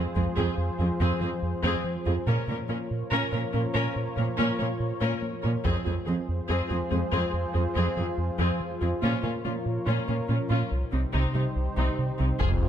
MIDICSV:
0, 0, Header, 1, 13, 480
1, 0, Start_track
1, 0, Key_signature, -4, "minor"
1, 0, Tempo, 845070
1, 1288, Time_signature, 4, 2, 24, 8
1, 7206, End_track
2, 0, Start_track
2, 0, Title_t, "Violin section"
2, 0, Program_c, 0, 48
2, 7052, Note_on_c, 0, 72, 43
2, 7097, Note_off_c, 0, 72, 0
2, 7206, End_track
3, 0, Start_track
3, 0, Title_t, "Violin section"
3, 0, Program_c, 1, 48
3, 7042, Note_on_c, 1, 68, 44
3, 7088, Note_off_c, 1, 68, 0
3, 7206, End_track
4, 0, Start_track
4, 0, Title_t, "Analog synth pad"
4, 0, Program_c, 2, 89
4, 0, Note_on_c, 2, 53, 65
4, 0, Note_on_c, 2, 65, 60
4, 0, Note_on_c, 2, 68, 66
4, 0, Note_on_c, 2, 72, 63
4, 1267, Note_off_c, 2, 53, 0
4, 1267, Note_off_c, 2, 65, 0
4, 1286, Note_on_c, 2, 70, 67
4, 1287, Note_on_c, 2, 73, 64
4, 1289, Note_off_c, 2, 68, 0
4, 1289, Note_on_c, 2, 65, 61
4, 1290, Note_off_c, 2, 72, 0
4, 1290, Note_on_c, 2, 53, 65
4, 3186, Note_off_c, 2, 53, 0
4, 3186, Note_off_c, 2, 65, 0
4, 3207, Note_off_c, 2, 70, 0
4, 3207, Note_off_c, 2, 73, 0
4, 3211, Note_on_c, 2, 53, 63
4, 3211, Note_on_c, 2, 72, 63
4, 3212, Note_on_c, 2, 68, 66
4, 3214, Note_on_c, 2, 65, 67
4, 5129, Note_off_c, 2, 72, 0
4, 5130, Note_off_c, 2, 68, 0
4, 5131, Note_on_c, 2, 70, 62
4, 5131, Note_on_c, 2, 73, 62
4, 6067, Note_off_c, 2, 53, 0
4, 6068, Note_off_c, 2, 65, 0
4, 6084, Note_on_c, 2, 63, 54
4, 6086, Note_on_c, 2, 55, 57
4, 6086, Note_on_c, 2, 67, 55
4, 6086, Note_on_c, 2, 72, 55
4, 6089, Note_off_c, 2, 70, 0
4, 6089, Note_off_c, 2, 73, 0
4, 7044, Note_off_c, 2, 72, 0
4, 7046, Note_off_c, 2, 63, 0
4, 7047, Note_off_c, 2, 55, 0
4, 7047, Note_off_c, 2, 67, 0
4, 7049, Note_on_c, 2, 65, 66
4, 7050, Note_on_c, 2, 53, 61
4, 7051, Note_on_c, 2, 72, 64
4, 7053, Note_on_c, 2, 68, 65
4, 7206, Note_off_c, 2, 53, 0
4, 7206, Note_off_c, 2, 65, 0
4, 7206, Note_off_c, 2, 68, 0
4, 7206, Note_off_c, 2, 72, 0
4, 7206, End_track
5, 0, Start_track
5, 0, Title_t, "Viola section"
5, 0, Program_c, 3, 48
5, 88, Note_on_c, 3, 60, 40
5, 89, Note_on_c, 3, 68, 38
5, 134, Note_off_c, 3, 60, 0
5, 134, Note_off_c, 3, 68, 0
5, 207, Note_on_c, 3, 68, 63
5, 209, Note_on_c, 3, 60, 56
5, 319, Note_off_c, 3, 68, 0
5, 320, Note_off_c, 3, 60, 0
5, 452, Note_on_c, 3, 68, 42
5, 453, Note_on_c, 3, 60, 44
5, 498, Note_off_c, 3, 60, 0
5, 498, Note_off_c, 3, 68, 0
5, 569, Note_on_c, 3, 68, 58
5, 570, Note_on_c, 3, 60, 57
5, 679, Note_off_c, 3, 68, 0
5, 680, Note_off_c, 3, 60, 0
5, 685, Note_on_c, 3, 68, 49
5, 688, Note_on_c, 3, 60, 45
5, 731, Note_off_c, 3, 68, 0
5, 733, Note_off_c, 3, 60, 0
5, 926, Note_on_c, 3, 60, 68
5, 927, Note_on_c, 3, 68, 62
5, 1039, Note_off_c, 3, 60, 0
5, 1039, Note_off_c, 3, 68, 0
5, 1170, Note_on_c, 3, 60, 54
5, 1171, Note_on_c, 3, 68, 53
5, 1215, Note_off_c, 3, 60, 0
5, 1216, Note_off_c, 3, 68, 0
5, 1289, Note_on_c, 3, 70, 55
5, 1290, Note_on_c, 3, 61, 63
5, 1400, Note_off_c, 3, 70, 0
5, 1401, Note_off_c, 3, 61, 0
5, 1410, Note_on_c, 3, 70, 43
5, 1411, Note_on_c, 3, 61, 41
5, 1456, Note_off_c, 3, 61, 0
5, 1456, Note_off_c, 3, 70, 0
5, 1524, Note_on_c, 3, 61, 47
5, 1524, Note_on_c, 3, 70, 43
5, 1569, Note_off_c, 3, 61, 0
5, 1569, Note_off_c, 3, 70, 0
5, 1765, Note_on_c, 3, 61, 65
5, 1765, Note_on_c, 3, 70, 63
5, 1878, Note_off_c, 3, 61, 0
5, 1878, Note_off_c, 3, 70, 0
5, 1885, Note_on_c, 3, 61, 40
5, 1887, Note_on_c, 3, 70, 42
5, 1930, Note_off_c, 3, 61, 0
5, 1933, Note_off_c, 3, 70, 0
5, 2005, Note_on_c, 3, 61, 50
5, 2005, Note_on_c, 3, 70, 43
5, 2050, Note_off_c, 3, 61, 0
5, 2050, Note_off_c, 3, 70, 0
5, 2122, Note_on_c, 3, 70, 60
5, 2123, Note_on_c, 3, 61, 57
5, 2237, Note_off_c, 3, 61, 0
5, 2237, Note_off_c, 3, 70, 0
5, 2365, Note_on_c, 3, 61, 46
5, 2369, Note_on_c, 3, 70, 45
5, 2411, Note_off_c, 3, 61, 0
5, 2414, Note_off_c, 3, 70, 0
5, 2484, Note_on_c, 3, 61, 65
5, 2484, Note_on_c, 3, 70, 64
5, 2596, Note_off_c, 3, 61, 0
5, 2598, Note_off_c, 3, 70, 0
5, 2603, Note_on_c, 3, 61, 46
5, 2605, Note_on_c, 3, 70, 52
5, 2649, Note_off_c, 3, 61, 0
5, 2650, Note_off_c, 3, 70, 0
5, 2842, Note_on_c, 3, 61, 61
5, 2845, Note_on_c, 3, 70, 63
5, 2956, Note_off_c, 3, 61, 0
5, 2958, Note_off_c, 3, 70, 0
5, 3081, Note_on_c, 3, 61, 53
5, 3082, Note_on_c, 3, 70, 56
5, 3126, Note_off_c, 3, 61, 0
5, 3128, Note_off_c, 3, 70, 0
5, 3202, Note_on_c, 3, 60, 66
5, 3202, Note_on_c, 3, 68, 62
5, 3314, Note_off_c, 3, 68, 0
5, 3316, Note_off_c, 3, 60, 0
5, 3320, Note_on_c, 3, 68, 37
5, 3322, Note_on_c, 3, 60, 44
5, 3366, Note_off_c, 3, 68, 0
5, 3368, Note_off_c, 3, 60, 0
5, 3441, Note_on_c, 3, 68, 42
5, 3444, Note_on_c, 3, 60, 42
5, 3486, Note_off_c, 3, 68, 0
5, 3489, Note_off_c, 3, 60, 0
5, 3681, Note_on_c, 3, 60, 60
5, 3681, Note_on_c, 3, 68, 64
5, 3790, Note_off_c, 3, 60, 0
5, 3790, Note_off_c, 3, 68, 0
5, 3796, Note_on_c, 3, 60, 46
5, 3797, Note_on_c, 3, 68, 42
5, 3842, Note_off_c, 3, 60, 0
5, 3842, Note_off_c, 3, 68, 0
5, 3920, Note_on_c, 3, 60, 41
5, 3920, Note_on_c, 3, 68, 44
5, 3965, Note_off_c, 3, 60, 0
5, 3965, Note_off_c, 3, 68, 0
5, 4039, Note_on_c, 3, 68, 61
5, 4043, Note_on_c, 3, 60, 61
5, 4155, Note_off_c, 3, 68, 0
5, 4157, Note_off_c, 3, 60, 0
5, 4280, Note_on_c, 3, 68, 41
5, 4281, Note_on_c, 3, 60, 42
5, 4325, Note_off_c, 3, 68, 0
5, 4326, Note_off_c, 3, 60, 0
5, 4399, Note_on_c, 3, 60, 60
5, 4400, Note_on_c, 3, 68, 61
5, 4515, Note_off_c, 3, 60, 0
5, 4516, Note_off_c, 3, 68, 0
5, 4522, Note_on_c, 3, 60, 45
5, 4525, Note_on_c, 3, 68, 46
5, 4567, Note_off_c, 3, 60, 0
5, 4571, Note_off_c, 3, 68, 0
5, 4761, Note_on_c, 3, 60, 55
5, 4763, Note_on_c, 3, 68, 51
5, 4876, Note_off_c, 3, 60, 0
5, 4877, Note_off_c, 3, 68, 0
5, 5004, Note_on_c, 3, 60, 43
5, 5006, Note_on_c, 3, 68, 43
5, 5050, Note_off_c, 3, 60, 0
5, 5051, Note_off_c, 3, 68, 0
5, 5123, Note_on_c, 3, 65, 53
5, 5124, Note_on_c, 3, 61, 55
5, 5233, Note_off_c, 3, 61, 0
5, 5233, Note_off_c, 3, 65, 0
5, 5240, Note_on_c, 3, 61, 40
5, 5240, Note_on_c, 3, 65, 35
5, 5285, Note_off_c, 3, 65, 0
5, 5286, Note_off_c, 3, 61, 0
5, 5360, Note_on_c, 3, 65, 40
5, 5361, Note_on_c, 3, 61, 39
5, 5405, Note_off_c, 3, 65, 0
5, 5406, Note_off_c, 3, 61, 0
5, 5600, Note_on_c, 3, 65, 48
5, 5601, Note_on_c, 3, 61, 52
5, 5714, Note_off_c, 3, 65, 0
5, 5716, Note_off_c, 3, 61, 0
5, 5721, Note_on_c, 3, 65, 37
5, 5722, Note_on_c, 3, 61, 35
5, 5766, Note_off_c, 3, 65, 0
5, 5767, Note_off_c, 3, 61, 0
5, 5841, Note_on_c, 3, 61, 36
5, 5842, Note_on_c, 3, 65, 31
5, 5886, Note_off_c, 3, 61, 0
5, 5888, Note_off_c, 3, 65, 0
5, 5963, Note_on_c, 3, 61, 49
5, 5964, Note_on_c, 3, 65, 51
5, 6077, Note_off_c, 3, 61, 0
5, 6077, Note_off_c, 3, 65, 0
5, 6201, Note_on_c, 3, 63, 37
5, 6202, Note_on_c, 3, 60, 33
5, 6247, Note_off_c, 3, 60, 0
5, 6247, Note_off_c, 3, 63, 0
5, 6322, Note_on_c, 3, 60, 48
5, 6322, Note_on_c, 3, 63, 49
5, 6434, Note_off_c, 3, 63, 0
5, 6435, Note_off_c, 3, 60, 0
5, 6441, Note_on_c, 3, 60, 39
5, 6441, Note_on_c, 3, 63, 35
5, 6487, Note_off_c, 3, 60, 0
5, 6487, Note_off_c, 3, 63, 0
5, 6682, Note_on_c, 3, 63, 51
5, 6684, Note_on_c, 3, 60, 44
5, 6797, Note_off_c, 3, 63, 0
5, 6798, Note_off_c, 3, 60, 0
5, 6927, Note_on_c, 3, 60, 38
5, 6927, Note_on_c, 3, 63, 37
5, 6972, Note_off_c, 3, 60, 0
5, 6972, Note_off_c, 3, 63, 0
5, 7042, Note_on_c, 3, 65, 45
5, 7087, Note_off_c, 3, 65, 0
5, 7206, End_track
6, 0, Start_track
6, 0, Title_t, "Synth pluck"
6, 0, Program_c, 4, 84
6, 91, Note_on_c, 4, 56, 54
6, 162, Note_off_c, 4, 56, 0
6, 208, Note_on_c, 4, 53, 70
6, 280, Note_off_c, 4, 53, 0
6, 450, Note_on_c, 4, 65, 51
6, 521, Note_off_c, 4, 65, 0
6, 569, Note_on_c, 4, 53, 74
6, 641, Note_off_c, 4, 53, 0
6, 688, Note_on_c, 4, 60, 55
6, 760, Note_off_c, 4, 60, 0
6, 929, Note_on_c, 4, 53, 70
6, 1000, Note_off_c, 4, 53, 0
6, 1170, Note_on_c, 4, 65, 54
6, 1242, Note_off_c, 4, 65, 0
6, 1290, Note_on_c, 4, 58, 80
6, 1361, Note_off_c, 4, 58, 0
6, 1412, Note_on_c, 4, 70, 49
6, 1483, Note_off_c, 4, 70, 0
6, 1529, Note_on_c, 4, 65, 50
6, 1601, Note_off_c, 4, 65, 0
6, 1769, Note_on_c, 4, 58, 73
6, 1840, Note_off_c, 4, 58, 0
6, 1889, Note_on_c, 4, 70, 59
6, 1961, Note_off_c, 4, 70, 0
6, 2009, Note_on_c, 4, 61, 55
6, 2081, Note_off_c, 4, 61, 0
6, 2127, Note_on_c, 4, 58, 75
6, 2199, Note_off_c, 4, 58, 0
6, 2367, Note_on_c, 4, 70, 52
6, 2440, Note_off_c, 4, 70, 0
6, 2485, Note_on_c, 4, 58, 81
6, 2558, Note_off_c, 4, 58, 0
6, 2606, Note_on_c, 4, 65, 55
6, 2679, Note_off_c, 4, 65, 0
6, 2848, Note_on_c, 4, 58, 70
6, 2920, Note_off_c, 4, 58, 0
6, 3086, Note_on_c, 4, 70, 54
6, 3158, Note_off_c, 4, 70, 0
6, 3207, Note_on_c, 4, 53, 79
6, 3280, Note_off_c, 4, 53, 0
6, 3323, Note_on_c, 4, 65, 53
6, 3397, Note_off_c, 4, 65, 0
6, 3444, Note_on_c, 4, 60, 52
6, 3517, Note_off_c, 4, 60, 0
6, 3685, Note_on_c, 4, 53, 75
6, 3758, Note_off_c, 4, 53, 0
6, 3805, Note_on_c, 4, 65, 59
6, 3878, Note_off_c, 4, 65, 0
6, 3924, Note_on_c, 4, 56, 50
6, 3997, Note_off_c, 4, 56, 0
6, 4045, Note_on_c, 4, 53, 70
6, 4118, Note_off_c, 4, 53, 0
6, 4283, Note_on_c, 4, 65, 51
6, 4356, Note_off_c, 4, 65, 0
6, 4402, Note_on_c, 4, 53, 77
6, 4476, Note_off_c, 4, 53, 0
6, 4522, Note_on_c, 4, 60, 55
6, 4596, Note_off_c, 4, 60, 0
6, 4762, Note_on_c, 4, 53, 68
6, 4836, Note_off_c, 4, 53, 0
6, 5005, Note_on_c, 4, 65, 49
6, 5078, Note_off_c, 4, 65, 0
6, 5124, Note_on_c, 4, 58, 74
6, 5197, Note_off_c, 4, 58, 0
6, 5245, Note_on_c, 4, 70, 51
6, 5318, Note_off_c, 4, 70, 0
6, 5366, Note_on_c, 4, 65, 49
6, 5438, Note_off_c, 4, 65, 0
6, 5603, Note_on_c, 4, 58, 71
6, 5676, Note_off_c, 4, 58, 0
6, 5725, Note_on_c, 4, 70, 51
6, 5798, Note_off_c, 4, 70, 0
6, 5845, Note_on_c, 4, 61, 48
6, 5918, Note_off_c, 4, 61, 0
6, 5968, Note_on_c, 4, 58, 69
6, 6040, Note_off_c, 4, 58, 0
6, 6207, Note_on_c, 4, 60, 49
6, 6280, Note_off_c, 4, 60, 0
6, 6329, Note_on_c, 4, 48, 71
6, 6401, Note_off_c, 4, 48, 0
6, 6448, Note_on_c, 4, 55, 49
6, 6520, Note_off_c, 4, 55, 0
6, 6691, Note_on_c, 4, 48, 64
6, 6762, Note_off_c, 4, 48, 0
6, 6928, Note_on_c, 4, 60, 51
6, 7000, Note_off_c, 4, 60, 0
6, 7047, Note_on_c, 4, 53, 75
6, 7119, Note_off_c, 4, 53, 0
6, 7169, Note_on_c, 4, 65, 48
6, 7206, Note_off_c, 4, 65, 0
6, 7206, End_track
7, 0, Start_track
7, 0, Title_t, "French horn section"
7, 0, Program_c, 5, 60
7, 7049, Note_on_c, 5, 56, 57
7, 7050, Note_on_c, 5, 60, 60
7, 7206, Note_off_c, 5, 56, 0
7, 7206, Note_off_c, 5, 60, 0
7, 7206, End_track
8, 0, Start_track
8, 0, Title_t, "Trombone section"
8, 0, Program_c, 6, 61
8, 7038, Note_on_c, 6, 41, 48
8, 7044, Note_on_c, 6, 53, 48
8, 7206, Note_off_c, 6, 41, 0
8, 7206, Note_off_c, 6, 53, 0
8, 7206, End_track
9, 0, Start_track
9, 0, Title_t, "Analog synth bass"
9, 0, Program_c, 7, 38
9, 89, Note_on_c, 7, 41, 47
9, 161, Note_off_c, 7, 41, 0
9, 211, Note_on_c, 7, 41, 74
9, 282, Note_off_c, 7, 41, 0
9, 327, Note_on_c, 7, 41, 51
9, 399, Note_off_c, 7, 41, 0
9, 449, Note_on_c, 7, 41, 52
9, 521, Note_off_c, 7, 41, 0
9, 568, Note_on_c, 7, 41, 74
9, 640, Note_off_c, 7, 41, 0
9, 687, Note_on_c, 7, 53, 53
9, 759, Note_off_c, 7, 53, 0
9, 809, Note_on_c, 7, 41, 49
9, 881, Note_off_c, 7, 41, 0
9, 927, Note_on_c, 7, 41, 77
9, 999, Note_off_c, 7, 41, 0
9, 1046, Note_on_c, 7, 53, 52
9, 1119, Note_off_c, 7, 53, 0
9, 1170, Note_on_c, 7, 41, 53
9, 1242, Note_off_c, 7, 41, 0
9, 1288, Note_on_c, 7, 46, 70
9, 1360, Note_off_c, 7, 46, 0
9, 1407, Note_on_c, 7, 46, 53
9, 1480, Note_off_c, 7, 46, 0
9, 1529, Note_on_c, 7, 58, 55
9, 1601, Note_off_c, 7, 58, 0
9, 1653, Note_on_c, 7, 46, 52
9, 1723, Note_off_c, 7, 46, 0
9, 1769, Note_on_c, 7, 46, 75
9, 1841, Note_off_c, 7, 46, 0
9, 1887, Note_on_c, 7, 46, 54
9, 1959, Note_off_c, 7, 46, 0
9, 2011, Note_on_c, 7, 46, 56
9, 2082, Note_off_c, 7, 46, 0
9, 2130, Note_on_c, 7, 46, 76
9, 2201, Note_off_c, 7, 46, 0
9, 2250, Note_on_c, 7, 46, 53
9, 2321, Note_off_c, 7, 46, 0
9, 2368, Note_on_c, 7, 46, 55
9, 2440, Note_off_c, 7, 46, 0
9, 2491, Note_on_c, 7, 46, 71
9, 2562, Note_off_c, 7, 46, 0
9, 2608, Note_on_c, 7, 58, 52
9, 2680, Note_off_c, 7, 58, 0
9, 2727, Note_on_c, 7, 46, 46
9, 2799, Note_off_c, 7, 46, 0
9, 2848, Note_on_c, 7, 46, 75
9, 2920, Note_off_c, 7, 46, 0
9, 2967, Note_on_c, 7, 58, 52
9, 3039, Note_off_c, 7, 58, 0
9, 3090, Note_on_c, 7, 46, 54
9, 3162, Note_off_c, 7, 46, 0
9, 3209, Note_on_c, 7, 41, 67
9, 3281, Note_off_c, 7, 41, 0
9, 3331, Note_on_c, 7, 41, 55
9, 3402, Note_off_c, 7, 41, 0
9, 3450, Note_on_c, 7, 53, 56
9, 3521, Note_off_c, 7, 53, 0
9, 3572, Note_on_c, 7, 41, 56
9, 3643, Note_off_c, 7, 41, 0
9, 3689, Note_on_c, 7, 41, 77
9, 3761, Note_off_c, 7, 41, 0
9, 3808, Note_on_c, 7, 41, 49
9, 3880, Note_off_c, 7, 41, 0
9, 3927, Note_on_c, 7, 41, 52
9, 3999, Note_off_c, 7, 41, 0
9, 4047, Note_on_c, 7, 41, 74
9, 4119, Note_off_c, 7, 41, 0
9, 4165, Note_on_c, 7, 41, 49
9, 4238, Note_off_c, 7, 41, 0
9, 4286, Note_on_c, 7, 41, 55
9, 4359, Note_off_c, 7, 41, 0
9, 4408, Note_on_c, 7, 41, 72
9, 4480, Note_off_c, 7, 41, 0
9, 4527, Note_on_c, 7, 53, 50
9, 4599, Note_off_c, 7, 53, 0
9, 4645, Note_on_c, 7, 41, 48
9, 4718, Note_off_c, 7, 41, 0
9, 4764, Note_on_c, 7, 41, 71
9, 4837, Note_off_c, 7, 41, 0
9, 4888, Note_on_c, 7, 53, 54
9, 4960, Note_off_c, 7, 53, 0
9, 5007, Note_on_c, 7, 41, 54
9, 5080, Note_off_c, 7, 41, 0
9, 5130, Note_on_c, 7, 46, 72
9, 5201, Note_off_c, 7, 46, 0
9, 5244, Note_on_c, 7, 46, 51
9, 5318, Note_off_c, 7, 46, 0
9, 5367, Note_on_c, 7, 58, 50
9, 5440, Note_off_c, 7, 58, 0
9, 5487, Note_on_c, 7, 46, 52
9, 5559, Note_off_c, 7, 46, 0
9, 5606, Note_on_c, 7, 46, 72
9, 5678, Note_off_c, 7, 46, 0
9, 5729, Note_on_c, 7, 46, 51
9, 5801, Note_off_c, 7, 46, 0
9, 5844, Note_on_c, 7, 46, 53
9, 5917, Note_off_c, 7, 46, 0
9, 5966, Note_on_c, 7, 46, 74
9, 6039, Note_off_c, 7, 46, 0
9, 6087, Note_on_c, 7, 36, 49
9, 6159, Note_off_c, 7, 36, 0
9, 6208, Note_on_c, 7, 36, 48
9, 6280, Note_off_c, 7, 36, 0
9, 6327, Note_on_c, 7, 36, 71
9, 6399, Note_off_c, 7, 36, 0
9, 6444, Note_on_c, 7, 48, 49
9, 6517, Note_off_c, 7, 48, 0
9, 6566, Note_on_c, 7, 36, 45
9, 6638, Note_off_c, 7, 36, 0
9, 6685, Note_on_c, 7, 36, 67
9, 6758, Note_off_c, 7, 36, 0
9, 6809, Note_on_c, 7, 48, 46
9, 6881, Note_off_c, 7, 48, 0
9, 6929, Note_on_c, 7, 36, 54
9, 7001, Note_off_c, 7, 36, 0
9, 7047, Note_on_c, 7, 41, 69
9, 7119, Note_off_c, 7, 41, 0
9, 7171, Note_on_c, 7, 41, 49
9, 7206, Note_off_c, 7, 41, 0
9, 7206, End_track
10, 0, Start_track
10, 0, Title_t, "Cello section"
10, 0, Program_c, 8, 48
10, 94, Note_on_c, 8, 41, 47
10, 139, Note_off_c, 8, 41, 0
10, 215, Note_on_c, 8, 41, 62
10, 260, Note_off_c, 8, 41, 0
10, 458, Note_on_c, 8, 41, 47
10, 503, Note_off_c, 8, 41, 0
10, 577, Note_on_c, 8, 41, 66
10, 622, Note_off_c, 8, 41, 0
10, 696, Note_on_c, 8, 41, 45
10, 741, Note_off_c, 8, 41, 0
10, 938, Note_on_c, 8, 41, 64
10, 983, Note_off_c, 8, 41, 0
10, 1174, Note_on_c, 8, 41, 44
10, 1219, Note_off_c, 8, 41, 0
10, 1292, Note_on_c, 8, 46, 65
10, 1338, Note_off_c, 8, 46, 0
10, 1415, Note_on_c, 8, 46, 49
10, 1460, Note_off_c, 8, 46, 0
10, 1531, Note_on_c, 8, 46, 45
10, 1576, Note_off_c, 8, 46, 0
10, 1773, Note_on_c, 8, 46, 61
10, 1818, Note_off_c, 8, 46, 0
10, 1894, Note_on_c, 8, 46, 46
10, 1940, Note_off_c, 8, 46, 0
10, 2015, Note_on_c, 8, 46, 46
10, 2060, Note_off_c, 8, 46, 0
10, 2133, Note_on_c, 8, 46, 60
10, 2179, Note_off_c, 8, 46, 0
10, 2376, Note_on_c, 8, 46, 50
10, 2422, Note_off_c, 8, 46, 0
10, 2495, Note_on_c, 8, 46, 64
10, 2540, Note_off_c, 8, 46, 0
10, 2615, Note_on_c, 8, 46, 49
10, 2660, Note_off_c, 8, 46, 0
10, 2853, Note_on_c, 8, 46, 64
10, 2899, Note_off_c, 8, 46, 0
10, 3093, Note_on_c, 8, 46, 44
10, 3139, Note_off_c, 8, 46, 0
10, 3211, Note_on_c, 8, 41, 63
10, 3256, Note_off_c, 8, 41, 0
10, 3330, Note_on_c, 8, 41, 47
10, 3375, Note_off_c, 8, 41, 0
10, 3453, Note_on_c, 8, 41, 47
10, 3499, Note_off_c, 8, 41, 0
10, 3689, Note_on_c, 8, 41, 60
10, 3735, Note_off_c, 8, 41, 0
10, 3812, Note_on_c, 8, 41, 46
10, 3857, Note_off_c, 8, 41, 0
10, 3930, Note_on_c, 8, 41, 47
10, 3976, Note_off_c, 8, 41, 0
10, 4052, Note_on_c, 8, 41, 60
10, 4097, Note_off_c, 8, 41, 0
10, 4292, Note_on_c, 8, 41, 45
10, 4338, Note_off_c, 8, 41, 0
10, 4415, Note_on_c, 8, 41, 60
10, 4460, Note_off_c, 8, 41, 0
10, 4533, Note_on_c, 8, 41, 44
10, 4579, Note_off_c, 8, 41, 0
10, 4770, Note_on_c, 8, 41, 55
10, 4816, Note_off_c, 8, 41, 0
10, 5012, Note_on_c, 8, 41, 43
10, 5057, Note_off_c, 8, 41, 0
10, 5131, Note_on_c, 8, 46, 57
10, 5177, Note_off_c, 8, 46, 0
10, 5250, Note_on_c, 8, 46, 45
10, 5295, Note_off_c, 8, 46, 0
10, 5373, Note_on_c, 8, 46, 39
10, 5418, Note_off_c, 8, 46, 0
10, 5610, Note_on_c, 8, 46, 52
10, 5655, Note_off_c, 8, 46, 0
10, 5728, Note_on_c, 8, 46, 39
10, 5773, Note_off_c, 8, 46, 0
10, 5847, Note_on_c, 8, 46, 39
10, 5892, Note_off_c, 8, 46, 0
10, 5963, Note_on_c, 8, 46, 48
10, 6008, Note_off_c, 8, 46, 0
10, 6203, Note_on_c, 8, 48, 36
10, 6248, Note_off_c, 8, 48, 0
10, 6325, Note_on_c, 8, 48, 49
10, 6371, Note_off_c, 8, 48, 0
10, 6447, Note_on_c, 8, 48, 34
10, 6492, Note_off_c, 8, 48, 0
10, 6686, Note_on_c, 8, 48, 48
10, 6731, Note_off_c, 8, 48, 0
10, 6927, Note_on_c, 8, 48, 36
10, 6972, Note_off_c, 8, 48, 0
10, 7048, Note_on_c, 8, 41, 49
10, 7094, Note_off_c, 8, 41, 0
10, 7206, End_track
11, 0, Start_track
11, 0, Title_t, "Detuned saw bass"
11, 0, Program_c, 10, 39
11, 7047, Note_on_c, 10, 29, 59
11, 7206, Note_off_c, 10, 29, 0
11, 7206, End_track
12, 0, Start_track
12, 0, Title_t, "Double bass section"
12, 0, Program_c, 11, 48
12, 7049, Note_on_c, 11, 29, 48
12, 7094, Note_off_c, 11, 29, 0
12, 7206, End_track
13, 0, Start_track
13, 0, Title_t, "Taiko and cinematic ensemble drums"
13, 91, Note_on_c, 9, 41, 31
13, 148, Note_off_c, 9, 41, 0
13, 3207, Note_on_c, 9, 41, 58
13, 3263, Note_off_c, 9, 41, 0
13, 7050, Note_on_c, 9, 41, 80
13, 7106, Note_off_c, 9, 41, 0
13, 7206, End_track
0, 0, End_of_file